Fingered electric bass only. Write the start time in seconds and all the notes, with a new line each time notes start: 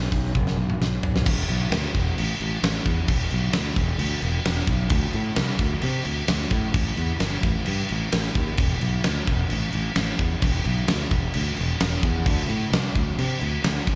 0.12 B1
0.35 F#1
0.57 B1
0.80 B1
1.02 B1
1.27 E1
1.49 B1
1.71 D2
1.95 E1
2.18 A1
2.40 A1
2.63 A1
2.86 E2
3.09 E1
3.33 B1
3.55 D2
3.77 E1
3.99 D2
4.23 E1
4.45 E1
4.68 B1
4.90 D2
5.14 A2
5.37 C2
5.59 D2
5.83 C3
6.05 D2
6.29 D2
6.52 A2
6.74 A1
6.97 E2
7.21 G1
7.43 A1
7.67 G2
7.91 A1
8.13 A1
8.35 D#2
8.58 E1
8.81 B1
9.05 D2
9.27 E1
9.51 A1
9.73 A1
9.96 A1
10.19 E2
10.43 E1
10.66 B1
10.89 D2
11.11 E1
11.36 D2
11.59 E1
11.81 E1
12.03 E2
12.27 D2
12.49 A2
12.72 C2
12.96 D2
13.19 C3
13.42 D2
13.64 D2
13.88 G1